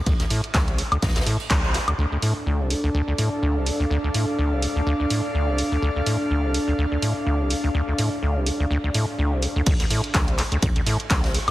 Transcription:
0.06 D2, kick, closed hi-hat, ride
0.20 D2, snare, closed hi-hat
0.30 A2, open hi-hat, ride
0.44 closed hi-hat
0.54 D2, kick, snare, clap, closed hi-hat, ride
0.68 C2, closed hi-hat, ride
0.78 D2, open hi-hat
0.92 D2, closed hi-hat, high woodblock
1.02 D2, kick, snare, closed hi-hat, ride
1.08 snare, ride
1.16 D2, snare, closed hi-hat, ride
1.21 snare, ride
1.26 A2, open hi-hat, ride
1.40 ride
1.50 D2, kick, snare, clap, closed hi-hat
1.64 C2, ride
1.74 D2, snare, open hi-hat, ride
1.88 D2, closed hi-hat, high woodblock
1.98 D2 D4
2.12 D2
2.22 A2 A4, open hi-hat
2.46 D2
2.53 D5
2.60 C2
2.70 D2, open hi-hat
2.84 D2
2.94 D2
3.05 D2 F5
3.18 A2, open hi-hat
3.42 D2
3.56 C2
3.66 D2, open hi-hat
3.80 D2
3.91 D2
4.04 D2
4.14 A2, open hi-hat
4.38 D2
4.52 C2
4.62 D2, open hi-hat
4.76 D2
4.86 D2
5.00 D2
5.10 A2, open hi-hat
5.34 D2
5.48 C2
5.58 D2, open hi-hat
5.72 D2
5.82 D2
5.96 D2
6.06 A2, open hi-hat
6.30 D2
6.44 C2
6.54 D2, open hi-hat
6.68 D2
6.78 D2
6.92 D2
7.02 A2, open hi-hat
7.27 D2
7.40 C2
7.50 D2, open hi-hat
7.64 D2
7.75 D2
7.88 D2
7.98 A2, open hi-hat
8.22 D2
8.36 C2
8.46 D2, open hi-hat
8.60 D2
8.71 D2
8.84 D2
8.94 A2, open hi-hat
9.19 D2
9.32 C2
9.43 D2, open hi-hat
9.56 D2
9.66 D2, kick, closed hi-hat, crash, ride
9.79 D2, snare, closed hi-hat
9.90 A2, open hi-hat, ride
10.04 closed hi-hat
10.14 D2, kick, snare, clap, closed hi-hat, ride
10.28 C2, closed hi-hat
10.38 D2, clap, open hi-hat, ride
10.52 D2, closed hi-hat
10.62 D2, kick, closed hi-hat, ride
10.76 D2, closed hi-hat
10.86 A2, snare, open hi-hat, ride
11.00 closed hi-hat
11.10 D2, kick, snare, clap, closed hi-hat, ride
11.24 C2, snare, closed hi-hat
11.34 D2, open hi-hat, ride
11.48 D2, snare

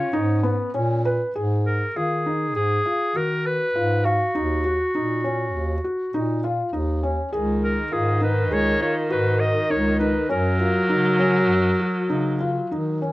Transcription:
Already playing: C#4 C#5
0.13 G#2 D#4
0.43 B3
0.74 A#2 C#4
1.05 B4
1.35 G#2 G#4
1.66 A#4
1.96 D#3 F4 G#4
2.26 D#4
2.55 G#2 G#4
2.85 F4
3.16 D#3 F#4 A#4
3.46 B4
3.76 G#2 F4
4.05 F#4 F5
4.35 D#2 D#4
4.65 F#4
4.95 A#2 D#4
5.24 C#4
5.55 D#2
5.84 F#4
6.14 A#2 D#4
6.44 F4
6.73 D#2 D#4
7.03 C#4
7.32 C#2 D#3 G#4
7.64 A#4
7.92 G#2 F4 G#4
8.21 D#4 B4
8.51 C#2 G#4 C#5
8.80 F4 C#5
9.10 G#2 F#4 B4
9.40 D#5
9.70 C#2 D#4 C#5
10.00 D#4 B4
10.29 F#2 F#3 C#4 A#4
10.59 F4
10.89 C#3 D#4
11.19 C#4
11.50 F#2
11.80 F#4
12.09 C#3 D#4
12.40 F4
12.71 D#3 D#4
13.02 C#4

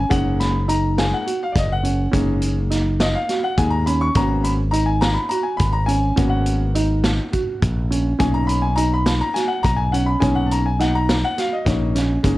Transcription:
Already playing: G#5
0.09 F#1 G#3 A#3 C#4 D#4 F#5, kick, closed hi-hat
0.40 B5, snare, closed hi-hat
0.68 D#4 A#5, closed hi-hat
0.97 G#3 A#3 D#4 G#5, snare, closed hi-hat
1.14 F#5
1.26 F#4, closed hi-hat
1.43 F5
1.52 F#1 D5, kick, snare, closed hi-hat
1.58 D#5
1.72 F#5
1.83 C#4, closed hi-hat
2.11 F#1 G#3 A#3 C#4 D#4, kick, closed hi-hat
2.42 closed hi-hat
2.70 D#4, snare, closed hi-hat
3.00 D#5, snare, closed hi-hat
3.14 F5
3.29 F#4, snare, closed hi-hat
3.44 F#5
3.58 D#2 G#3 A#3 D#4 G#5, kick, closed hi-hat
3.70 A#5
3.86 C#4 B5, closed hi-hat
4.01 C#6
4.15 G#1 A#3 B3 C#4 F#4 A#5, kick, closed hi-hat
4.44 B5, closed hi-hat
4.71 D#4 A#5, closed hi-hat
4.86 G#5
5.01 A#5, snare, closed hi-hat
5.14 B5
5.29 F#4 A#5, closed hi-hat
5.43 G#5
5.57 G#1 B5, kick, closed hi-hat
5.73 A#5
5.86 C#4 G#5, closed hi-hat
6.16 G#1 A#3 B3 C#4 F#4, kick, closed hi-hat
6.30 F#5
6.46 closed hi-hat
6.75 D#4, closed hi-hat
7.04 snare, closed hi-hat
7.32 F#4, kick, closed hi-hat
7.62 A#1, kick, closed hi-hat
7.90 C#4, closed hi-hat
8.19 B1 A#3 C#4 D#4 G#5, kick, closed hi-hat
8.34 A#5
8.47 B5, closed hi-hat
8.62 G#5
8.76 D#4 A#5, closed hi-hat
8.94 B5
9.06 snare, closed hi-hat
9.21 A#5
9.34 F#4 G#5, snare, closed hi-hat
9.48 F#5
9.63 B1 A#5, kick, closed hi-hat
9.76 G#5
9.92 C#4 F#5, closed hi-hat
10.06 B5
10.19 B1 A#3 C#4 D#4 G#5, kick, closed hi-hat
10.35 F#5
10.46 A5
10.51 A#5, closed hi-hat
10.66 G#5
10.79 D#4 F#5, snare, closed hi-hat
10.95 A#5
11.09 snare, closed hi-hat
11.24 F#5
11.37 F#4 F5, snare, closed hi-hat
11.53 D#5
11.65 A#1 A#3 C#4 D#4, kick, snare, closed hi-hat
11.95 C#4, snare, closed hi-hat
12.23 F#1 G#3 A#3 C#4 D#4, kick, closed hi-hat

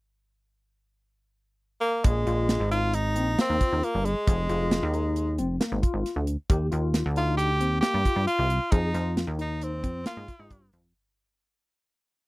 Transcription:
1.81 A#3
2.04 A#1 G#3 G#4, kick, closed hi-hat
2.27 A#1 F4, closed hi-hat
2.49 snare, closed hi-hat
2.60 G#1
2.71 D#4 F4, closed hi-hat
2.94 D#4, closed hi-hat
3.15 A#1 C4, closed hi-hat
3.39 A#3 C4, snare, closed hi-hat
3.50 D#2
3.61 F4, kick, closed hi-hat
3.73 D#2
3.83 A#3, closed hi-hat
3.95 G1
4.05 G#3, closed hi-hat
4.27 F1 G#4, kick, closed hi-hat
4.49 F1 F4, closed hi-hat
4.71 snare, closed hi-hat
4.83 D#2
4.94 D#4, closed hi-hat
5.16 closed hi-hat
5.38 F1 C4, closed hi-hat
5.60 A#3, snare, closed hi-hat
5.72 G#1
5.82 F4, kick, closed hi-hat
5.94 G#1
6.06 snare, closed hi-hat
6.16 D2
6.27 closed hi-hat
6.50 D#2 G4, kick, closed hi-hat
6.71 D#2 F4, closed hi-hat
6.94 snare, closed hi-hat
7.06 D2
7.16 D#4 F4, closed hi-hat
7.37 G4, closed hi-hat
7.60 D#2 C4, closed hi-hat
7.81 A#3 G4, snare, closed hi-hat
7.94 G2
8.05 F4, kick, closed hi-hat
8.16 G2
8.27 F4, closed hi-hat
8.39 C2
8.50 closed hi-hat
8.72 F2 D#4 G#4, kick, closed hi-hat
8.94 F2 F4, snare, closed hi-hat
9.17 snare, closed hi-hat
9.27 D#2
9.39 D#4, closed hi-hat
9.61 C4, closed hi-hat
9.83 F2 C4, kick, closed hi-hat
10.06 A#3 F4, snare, closed hi-hat
10.17 G#2
10.28 F4, kick, closed hi-hat
10.40 G#2
10.50 G2, kick, closed hi-hat
10.73 F2, closed hi-hat

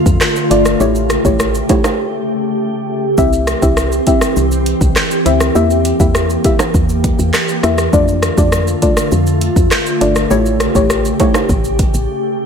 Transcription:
Already playing: D3 A3 F4
0.06 F2, kick, maracas, shaker
0.21 cross-stick, clap, maracas, shaker
0.36 maracas, shaker
0.50 G1 A3 D4 F4 D5, closed hi-hat, maracas, shaker
0.65 cross-stick, maracas, shaker
0.80 A1 C#3 A3 E4 G4 C#5, maracas, shaker
0.95 maracas, shaker
1.10 cross-stick, closed hi-hat, maracas, shaker
1.25 A1 A3 E4 G4 C#5, kick, maracas, shaker
1.39 cross-stick, maracas, shaker
1.55 maracas, shaker
1.69 A3 E4 G4 C#5, kick, closed hi-hat, high timbale, shaker, maracas
1.84 cross-stick, high timbale, maracas, shaker
3.18 C2 E3 C4 E4 G4 E5, kick, shaker, maracas
3.33 maracas, shaker
3.47 cross-stick, closed hi-hat, maracas, shaker
3.62 C2 C4 E4 G4 E5, kick, maracas, shaker
3.77 cross-stick, maracas, shaker
3.92 shaker, maracas
4.07 C4 E4 G4 E5, kick, closed hi-hat, shaker, maracas
4.21 cross-stick, shaker, maracas
4.36 C2, shaker, maracas
4.51 shaker, maracas
4.66 closed hi-hat, shaker
4.81 C2, kick, shaker, maracas
4.96 cross-stick, clap, shaker, maracas
5.11 maracas, shaker
5.25 D2 C4 E4 G4 E5, closed hi-hat, shaker, maracas
5.40 cross-stick, shaker, maracas
5.55 E2 E3 A#3 E4 G4 E5, shaker, maracas
5.70 maracas, shaker
5.85 closed hi-hat, shaker, maracas
6.00 E2 A#3 E4 G4 E5, kick, shaker, maracas
6.15 cross-stick, maracas, shaker
6.30 shaker, maracas
6.44 A#3 E4 G4 E5, kick, closed hi-hat, shaker, maracas
6.59 cross-stick, high timbale, shaker, maracas
6.74 E2, kick, shaker, maracas
6.89 shaker, maracas
7.04 kick, closed hi-hat, shaker
7.19 E2, maracas, shaker
7.34 cross-stick, clap, shaker, maracas
7.48 maracas, shaker
7.63 E2 A#3 E4 G4 E5, cross-stick, closed hi-hat, maracas, shaker
7.78 cross-stick, maracas, shaker
7.93 F2 D3 A3 D4 F4 D5, kick, shaker, maracas
8.08 maracas, shaker
8.22 cross-stick, closed hi-hat, maracas, shaker
8.37 F2 A3 D4 F4 D5, kick, maracas, shaker
8.52 cross-stick, maracas, shaker
8.67 shaker, maracas
8.82 A3 D4 F4 D5, kick, closed hi-hat, shaker, maracas
8.97 cross-stick, maracas, shaker
9.12 F2, shaker, maracas
9.26 shaker, maracas
9.41 closed hi-hat, shaker
9.56 F2, kick, maracas, shaker
9.71 cross-stick, clap, maracas, shaker
9.86 maracas, shaker
10.01 G1 A3 D4 F4 D5, closed hi-hat, maracas, shaker
10.16 cross-stick, maracas, shaker
10.30 A1 C#3 A3 E4 G4 C#5, shaker, maracas
10.46 maracas, shaker
10.60 cross-stick, closed hi-hat, maracas, shaker
10.75 A1 A3 E4 G4 C#5, kick, shaker, maracas
10.90 cross-stick, maracas, shaker
11.05 shaker, maracas
11.19 A3 E4 G4 C#5, kick, closed hi-hat, high timbale, shaker, maracas
11.34 cross-stick, high timbale, shaker, maracas
11.49 A1, kick, shaker, maracas
11.64 shaker, maracas
11.79 kick, closed hi-hat, shaker
11.94 A1, maracas, shaker

